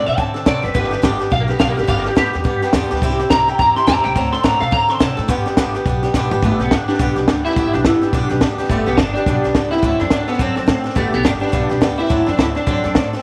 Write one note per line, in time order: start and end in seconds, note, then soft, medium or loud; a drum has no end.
0.06 0.15 B2 medium
0.06 0.17 C4 soft
0.06 0.18 D4 soft
0.06 0.18 A4 medium
0.06 0.18 E5 loud
0.06 snare soft
0.17 0.37 D3 medium
0.17 0.35 F#3 medium
0.17 0.35 C4 medium
0.17 0.35 D4 medium
0.17 0.33 A4 medium
0.17 0.46 A5 medium
0.17 kick loud
0.17 snare soft
0.34 0.46 C4 soft
0.34 0.46 D4 medium
0.34 0.46 A4 medium
0.34 snare soft
0.46 0.58 C3 medium
0.46 0.63 D3 medium
0.46 0.64 F#3 medium
0.46 0.64 C4 medium
0.46 0.63 D4 medium
0.46 0.61 A4 medium
0.46 0.64 D5 medium
0.46 kick medium
0.46 snare loud
0.46 hi-hat pedal medium
0.63 0.71 F#1 medium
0.63 0.75 C4 soft
0.63 0.75 D4 medium
0.63 0.74 A4 medium
0.63 0.74 B4 medium
0.63 snare soft
0.74 0.94 G1 medium
0.74 0.92 G2 medium
0.74 0.92 D3 medium
0.74 0.92 G3 medium
0.74 0.92 B3 medium
0.74 0.91 D4 medium
0.74 0.90 G4 medium
0.74 1.03 B4 loud
0.74 kick loud
0.74 snare soft
0.84 snare soft
0.91 1.02 G3 soft
0.91 1.03 B3 soft
0.91 1.03 D4 medium
0.91 1.03 G4 medium
0.91 snare soft
1.02 1.22 G1 loud
1.02 1.20 G2 medium
1.02 1.20 D3 medium
1.02 1.20 G3 medium
1.02 1.20 B3 medium
1.02 1.19 D4 medium
1.02 1.18 G4 medium
1.02 kick medium
1.02 snare loud
1.02 hi-hat pedal loud
1.19 1.29 G3 medium
1.19 1.30 B3 medium
1.19 1.31 D4 medium
1.19 1.31 G4 medium
1.19 snare soft
1.30 1.51 B1 loud
1.30 1.48 G3 medium
1.30 1.48 B3 medium
1.30 1.48 D4 medium
1.30 1.47 G4 medium
1.30 1.41 F5 loud
1.30 kick loud
1.30 snare soft
1.41 1.50 A#4 medium
1.48 1.59 G3 soft
1.48 1.59 B3 medium
1.48 1.60 D4 medium
1.48 1.60 G4 medium
1.48 1.60 G4 loud
1.48 snare soft
1.59 1.72 B1 medium
1.59 1.77 G2 medium
1.59 1.77 D3 medium
1.59 1.77 G3 medium
1.59 1.77 B3 medium
1.59 1.77 D4 medium
1.59 1.76 G4 medium
1.59 1.69 F5 loud
1.59 kick medium
1.59 snare loud
1.59 hi-hat pedal medium
1.69 1.78 A#4 medium
1.77 1.85 G1 medium
1.77 1.87 G3 soft
1.77 1.88 B3 soft
1.77 1.88 D4 medium
1.77 1.88 G4 medium
1.77 snare soft
1.83 snare soft
1.87 2.07 G1 loud
1.87 2.05 G2 medium
1.87 2.06 D3 medium
1.87 2.06 G3 medium
1.87 2.06 B3 medium
1.87 2.04 D4 medium
1.87 2.03 G4 loud
1.87 1.98 F5 medium
1.87 kick loud
1.87 snare soft
1.97 2.07 A#4 medium
1.97 snare soft
2.04 2.16 G3 soft
2.04 2.16 B3 soft
2.04 2.16 D4 soft
2.04 2.16 G4 medium
2.04 2.16 G4 loud
2.04 snare soft
2.15 2.28 D2 loud
2.15 2.33 G2 medium
2.15 2.34 D3 medium
2.15 2.34 G3 medium
2.15 2.34 B3 medium
2.15 2.33 D4 medium
2.15 2.72 G4 loud
2.15 2.32 G4 medium
2.15 kick medium
2.15 snare loud
2.15 hi-hat pedal medium
2.33 2.42 E2 medium
2.33 2.43 G3 soft
2.33 2.44 B3 soft
2.33 2.45 D4 medium
2.33 2.45 G4 medium
2.33 snare soft
2.44 2.64 G2 medium
2.44 2.62 G3 medium
2.44 2.62 B3 medium
2.44 2.62 D4 medium
2.44 2.61 G4 medium
2.44 kick loud
2.44 snare soft
2.62 2.74 G3 medium
2.62 2.74 B3 medium
2.62 2.74 D4 medium
2.62 2.74 G4 medium
2.62 snare soft
2.73 2.85 E2 medium
2.73 2.91 G2 medium
2.73 2.91 D3 medium
2.73 2.91 G3 loud
2.73 2.92 B3 medium
2.73 2.91 D4 medium
2.73 2.90 G4 loud
2.73 kick medium
2.73 snare loud
2.73 hi-hat pedal medium
2.90 2.99 D2 medium
2.90 3.02 G3 medium
2.90 3.03 B3 medium
2.90 3.03 D4 medium
2.90 3.02 G4 medium
2.90 snare soft
2.96 snare soft
3.02 3.21 C2 loud
3.02 3.19 C3 medium
3.02 3.20 G3 loud
3.02 3.20 C4 medium
3.02 3.20 E4 loud
3.02 3.18 G4 loud
3.02 kick loud
3.02 snare soft
3.10 snare soft
3.19 3.30 C4 medium
3.19 3.31 E4 medium
3.19 3.31 G4 medium
3.19 snare soft
3.30 3.49 C2 medium
3.30 3.47 C3 medium
3.30 3.48 G3 medium
3.30 3.48 C4 medium
3.30 3.48 E4 medium
3.30 3.47 G4 medium
3.30 3.49 A#5 loud
3.30 kick loud
3.30 snare loud
3.30 hi-hat pedal medium
3.48 3.58 C4 soft
3.48 3.59 E4 medium
3.48 3.59 G4 medium
3.48 3.59 G5 medium
3.48 snare soft
3.58 3.78 E2 medium
3.58 3.76 G3 medium
3.58 3.76 C4 medium
3.58 3.77 E4 medium
3.58 3.75 G4 medium
3.58 3.76 A#5 medium
3.58 kick loud
3.58 snare soft
3.76 3.87 C4 soft
3.76 3.87 E4 medium
3.76 3.87 G4 medium
3.76 3.87 C6 loud
3.76 snare soft
3.87 3.99 E2 medium
3.87 4.04 C3 medium
3.87 4.04 G3 medium
3.87 4.05 C4 medium
3.87 4.04 E4 loud
3.87 4.02 G4 medium
3.87 4.04 A#5 loud
3.87 kick medium
3.87 snare loud
3.87 hi-hat pedal medium
4.04 4.13 C2 medium
4.04 4.16 C4 medium
4.04 4.16 E4 medium
4.04 4.15 G4 medium
4.04 4.15 G5 loud
4.04 snare soft
4.15 4.34 D2 loud
4.15 4.33 D3 medium
4.15 4.33 F#3 medium
4.15 4.33 C4 medium
4.15 4.33 D4 medium
4.15 4.31 A4 medium
4.15 4.32 A#5 loud
4.15 kick loud
4.15 snare soft
4.32 4.43 C4 soft
4.32 4.44 D4 soft
4.32 4.44 A4 medium
4.32 4.43 C6 loud
4.32 snare soft
4.43 4.56 A2 loud
4.43 4.61 D3 medium
4.43 4.61 F#3 medium
4.43 4.61 C4 medium
4.43 4.61 D4 medium
4.43 4.59 A4 medium
4.43 4.60 A#5 loud
4.43 kick medium
4.43 snare loud
4.43 hi-hat pedal loud
4.60 4.69 B2 medium
4.60 4.71 C4 soft
4.60 4.72 D4 medium
4.60 4.72 A4 medium
4.60 4.72 F5 medium
4.60 snare soft
4.71 4.91 D3 loud
4.71 4.89 F#3 medium
4.71 4.89 C4 medium
4.71 4.89 D4 medium
4.71 4.87 A4 medium
4.71 4.90 A#5 medium
4.71 kick loud
4.71 snare soft
4.88 5.00 C4 medium
4.88 5.00 D4 medium
4.88 5.00 A4 medium
4.88 5.02 C6 loud
4.88 snare soft
5.00 5.12 C3 medium
5.00 5.17 D3 medium
5.00 5.18 F#3 medium
5.00 5.18 C4 medium
5.00 5.18 D4 medium
5.00 5.16 A4 medium
5.00 5.18 A5 loud
5.00 kick medium
5.00 snare loud
5.00 hi-hat pedal medium
5.17 5.26 A2 medium
5.17 5.29 C4 medium
5.17 5.29 D4 medium
5.17 5.29 A4 medium
5.17 snare soft
5.28 5.48 G1 loud
5.28 5.46 G2 medium
5.28 5.46 D3 loud
5.28 5.46 G3 loud
5.28 5.46 B3 loud
5.28 5.46 D4 loud
5.28 5.45 G4 loud
5.28 kick loud
5.28 snare soft
5.46 5.57 G3 medium
5.46 5.58 B3 medium
5.46 5.58 D4 medium
5.46 5.57 G4 medium
5.46 snare soft
5.57 5.76 G1 loud
5.57 5.74 G2 medium
5.57 5.75 D3 medium
5.57 5.75 G3 medium
5.57 5.75 B3 loud
5.57 5.75 D4 loud
5.57 5.73 G4 medium
5.57 kick loud
5.57 snare loud
5.57 hi-hat pedal loud
5.74 5.85 G3 medium
5.74 5.86 B3 medium
5.74 5.87 D4 medium
5.74 5.86 G4 medium
5.74 snare soft
5.86 6.04 B1 medium
5.86 6.03 G3 medium
5.86 6.04 B3 medium
5.86 6.03 D4 medium
5.86 6.02 G4 medium
5.86 kick loud
5.86 snare soft
6.03 6.14 G3 medium
6.03 6.15 B3 medium
6.03 6.15 D4 medium
6.03 6.14 G4 medium
6.03 snare soft
6.14 6.25 B1 medium
6.14 6.31 G2 medium
6.14 6.32 D3 medium
6.14 6.32 G3 loud
6.14 6.32 B3 medium
6.14 6.31 D4 loud
6.14 6.30 G4 loud
6.14 kick medium
6.14 snare medium
6.14 hi-hat pedal medium
6.31 6.39 G1 medium
6.31 6.43 G3 medium
6.31 6.43 B3 medium
6.31 6.43 D4 medium
6.31 6.42 G4 medium
6.31 floor tom loud
6.42 6.54 G1 loud
6.42 6.60 G2 medium
6.42 6.60 D3 medium
6.42 6.60 G3 medium
6.42 6.61 A3 loud
6.42 6.61 B3 medium
6.42 6.59 D4 medium
6.42 6.58 G4 medium
6.42 kick loud
6.42 snare soft
6.59 6.67 B1 medium
6.59 6.70 G3 soft
6.59 6.71 B3 soft
6.59 6.73 B3 medium
6.59 6.71 D4 medium
6.59 6.71 G4 medium
6.59 snare soft
6.71 6.89 G1 medium
6.71 6.88 G3 medium
6.71 6.89 B3 medium
6.71 6.87 D4 loud
6.71 6.88 D4 medium
6.71 6.87 G4 medium
6.71 kick medium
6.71 snare loud
6.71 hi-hat pedal medium
6.88 6.99 G3 medium
6.88 6.99 B3 soft
6.88 7.41 D4 loud
6.88 7.00 D4 medium
6.88 6.99 G4 medium
6.88 snare soft
6.94 snare soft
6.99 7.11 B1 medium
6.99 7.16 G2 medium
6.99 7.17 D3 medium
6.99 7.17 G3 medium
6.99 7.17 B3 medium
6.99 7.16 D4 loud
6.99 7.15 G4 loud
6.99 kick loud
6.99 snare soft
7.16 7.24 B1 medium
7.16 7.27 G3 soft
7.16 7.28 B3 medium
7.16 7.28 D4 medium
7.16 7.27 G4 medium
7.16 snare soft
7.28 7.46 D2 medium
7.28 7.45 G3 medium
7.28 7.45 B3 medium
7.28 7.45 D4 medium
7.28 7.44 G4 medium
7.28 kick medium
7.28 snare loud
7.28 hi-hat pedal medium
7.45 7.56 G3 soft
7.45 7.57 B3 medium
7.45 7.57 D4 medium
7.45 7.71 E4 loud
7.45 7.56 G4 medium
7.45 snare soft
7.51 snare soft
7.56 7.68 G1 loud
7.56 7.74 G2 medium
7.56 7.74 D3 medium
7.56 7.74 G3 medium
7.56 7.74 B3 medium
7.56 7.73 D4 medium
7.56 7.72 G4 medium
7.56 kick loud
7.56 snare soft
7.73 7.81 B1 medium
7.73 7.83 G3 soft
7.73 7.84 B3 soft
7.73 7.84 D4 loud
7.73 7.85 D4 medium
7.73 7.84 G4 medium
7.73 snare soft
7.85 8.03 G1 medium
7.85 8.02 G3 medium
7.85 8.02 B3 medium
7.85 8.02 D4 medium
7.85 8.03 E4 loud
7.85 8.00 G4 medium
7.85 kick medium
7.85 snare loud
7.85 hi-hat pedal medium
8.02 8.13 G3 soft
8.02 8.13 B3 soft
8.02 8.12 D4 loud
8.02 8.13 D4 medium
8.02 8.13 G4 medium
8.02 snare soft
8.13 8.24 B1 medium
8.13 8.30 G2 medium
8.13 8.30 D3 medium
8.13 8.31 G3 medium
8.13 8.30 B3 medium
8.13 8.55 D4 loud
8.13 8.29 D4 medium
8.13 8.28 G4 medium
8.13 kick loud
8.13 snare soft
8.29 8.38 B1 medium
8.29 8.39 G3 medium
8.29 8.40 B3 medium
8.29 8.41 D4 medium
8.29 8.41 G4 medium
8.29 snare soft
8.41 8.60 D2 medium
8.41 8.58 G3 medium
8.41 8.59 B3 medium
8.41 8.58 D4 medium
8.41 8.57 G4 medium
8.41 kick medium
8.41 snare loud
8.41 hi-hat pedal medium
8.58 8.70 G3 medium
8.58 8.70 B3 medium
8.58 8.70 D4 medium
8.58 8.70 G4 medium
8.58 snare soft
8.64 snare soft
8.69 8.81 G1 loud
8.69 8.87 G2 medium
8.69 8.87 D3 medium
8.69 8.87 G3 medium
8.69 8.85 A3 loud
8.69 8.88 B3 medium
8.69 8.87 D4 medium
8.69 8.85 G4 medium
8.69 kick loud
8.69 snare soft
8.86 8.94 B1 medium
8.86 8.97 G3 soft
8.86 8.97 B3 loud
8.86 8.97 B3 soft
8.86 8.98 D4 medium
8.86 8.98 G4 medium
8.86 snare soft
8.97 9.16 G1 loud
8.97 9.15 G3 medium
8.97 9.15 B3 medium
8.97 9.12 D4 loud
8.97 9.15 D4 medium
8.97 9.14 G4 medium
8.97 kick medium
8.97 snare loud
8.97 hi-hat pedal medium
9.14 9.27 B3 soft
9.14 9.73 D4 loud
9.14 9.27 D4 medium
9.14 9.26 G4 medium
9.14 snare soft
9.18 9.27 G3 soft
9.26 9.37 B1 medium
9.26 9.44 G2 medium
9.26 9.44 D3 medium
9.26 9.44 G3 medium
9.26 9.44 B3 medium
9.26 9.44 D4 medium
9.26 9.43 G4 medium
9.26 kick loud
9.26 snare soft
9.44 9.51 B1 medium
9.44 9.54 G3 soft
9.44 9.55 B3 medium
9.44 9.56 D4 medium
9.44 9.55 G4 medium
9.44 snare soft
9.55 9.73 C#2 medium
9.55 9.72 G3 medium
9.55 9.73 B3 medium
9.55 9.71 D4 medium
9.55 9.70 G4 medium
9.55 kick medium
9.55 snare loud
9.55 hi-hat pedal medium
9.71 9.83 G3 soft
9.71 9.84 B3 medium
9.71 9.83 D4 medium
9.71 10.01 E4 loud
9.71 9.83 G4 medium
9.71 snare soft
9.77 snare soft
9.82 9.94 D2 loud
9.82 10.00 D3 medium
9.82 10.00 F#3 medium
9.82 10.01 C4 medium
9.82 10.00 D4 medium
9.82 9.98 A4 medium
9.82 kick loud
9.82 snare soft
10.00 10.08 F#2 medium
10.00 10.11 C4 soft
10.00 10.10 D4 loud
10.00 10.12 D4 medium
10.00 10.11 A4 medium
10.00 snare soft
10.10 10.30 D2 medium
10.10 10.28 F#3 medium
10.10 10.29 C4 medium
10.10 10.27 D4 loud
10.10 10.28 D4 medium
10.10 10.26 A4 medium
10.10 kick medium
10.10 snare loud
10.10 hi-hat pedal medium
10.28 10.40 B3 medium
10.28 10.39 C4 soft
10.28 10.40 D4 medium
10.28 10.39 A4 medium
10.28 snare soft
10.33 snare soft
10.39 10.51 F#2 medium
10.39 10.57 D3 medium
10.39 10.57 F#3 medium
10.39 10.82 C4 medium
10.39 10.57 C4 medium
10.39 10.56 D4 medium
10.39 10.54 A4 medium
10.39 kick loud
10.39 snare soft
10.55 10.64 F#2 medium
10.55 10.66 C4 medium
10.55 10.68 D4 medium
10.55 10.68 A4 medium
10.55 snare soft
10.66 10.86 A2 medium
10.66 10.85 F#3 medium
10.66 10.85 C4 medium
10.66 10.84 D4 medium
10.66 10.83 A4 medium
10.66 kick medium
10.66 snare loud
10.66 hi-hat pedal medium
10.84 10.96 C4 medium
10.84 10.96 D4 medium
10.84 10.96 A4 medium
10.84 snare soft
10.90 snare soft
10.95 11.07 G1 loud
10.95 11.13 G2 medium
10.95 11.13 D3 medium
10.95 11.14 G3 medium
10.95 11.14 A3 loud
10.95 11.13 B3 medium
10.95 11.12 D4 medium
10.95 11.11 G4 medium
10.95 kick loud
10.95 snare soft
11.12 11.21 B1 medium
11.12 11.22 G3 soft
11.12 11.26 B3 medium
11.12 11.24 B3 soft
11.12 11.24 D4 medium
11.12 11.24 G4 medium
11.12 snare soft
11.23 11.43 G1 medium
11.23 11.42 G3 medium
11.23 11.41 B3 medium
11.23 11.30 D4 loud
11.23 11.40 D4 medium
11.23 11.39 G4 medium
11.23 kick medium
11.23 snare loud
11.23 hi-hat pedal medium
11.40 11.52 G3 soft
11.40 11.52 B3 soft
11.40 11.95 D4 medium
11.40 11.52 D4 medium
11.40 11.52 G4 medium
11.40 snare soft
11.48 snare soft
11.52 11.64 B1 medium
11.52 11.70 G2 medium
11.52 11.70 D3 medium
11.52 11.71 G3 medium
11.52 11.70 B3 medium
11.52 11.69 D4 loud
11.52 11.68 G4 medium
11.52 kick loud
11.52 snare soft
11.69 11.78 B1 medium
11.69 11.80 G3 medium
11.69 11.80 B3 medium
11.69 11.82 D4 medium
11.69 11.81 G4 medium
11.69 snare soft
11.81 12.00 D2 medium
11.81 11.99 G3 medium
11.81 11.99 B3 medium
11.81 11.98 D4 medium
11.81 11.96 G4 medium
11.81 kick medium
11.81 snare loud
11.81 hi-hat pedal medium
11.98 12.09 G3 soft
11.98 12.10 B3 soft
11.98 12.09 D4 medium
11.98 12.25 E4 loud
11.98 12.10 G4 medium
11.98 snare soft
12.05 snare soft
12.09 12.22 D2 loud
12.09 12.27 D3 medium
12.09 12.27 F#3 medium
12.09 12.28 C4 medium
12.09 12.27 D4 medium
12.09 12.25 A4 medium
12.09 kick loud
12.09 snare soft
12.26 12.35 F#2 medium
12.26 12.38 C4 soft
12.26 12.38 D4 medium
12.26 12.38 D4 soft
12.26 12.38 A4 medium
12.26 snare soft
12.37 12.57 D2 medium
12.37 12.55 F#3 medium
12.37 12.56 C4 medium
12.37 12.55 D4 medium
12.37 12.44 E4 loud
12.37 12.54 A4 medium
12.37 kick medium
12.37 snare loud
12.37 hi-hat pedal medium
12.55 12.66 C4 soft
12.55 12.65 D4 medium
12.55 12.67 D4 medium
12.55 12.67 A4 medium
12.55 snare soft
12.67 12.78 F#2 medium
12.67 12.84 D3 medium
12.67 12.85 F#3 medium
12.67 12.85 C4 medium
12.67 13.09 D4 medium
12.67 12.84 D4 medium
12.67 12.83 A4 medium
12.67 kick loud
12.67 snare soft
12.84 12.92 F#2 medium
12.84 12.95 C4 medium
12.84 12.96 D4 medium
12.84 12.96 A4 medium
12.84 snare soft
12.95 13.14 A2 medium
12.95 13.13 F#3 medium
12.95 13.13 C4 medium
12.95 13.13 D4 medium
12.95 13.12 A4 medium
12.95 kick medium
12.95 snare loud
12.95 hi-hat pedal medium
13.13 13.22 C4 medium
13.13 13.22 D4 medium
13.13 13.22 A4 medium
13.13 snare soft
13.19 snare soft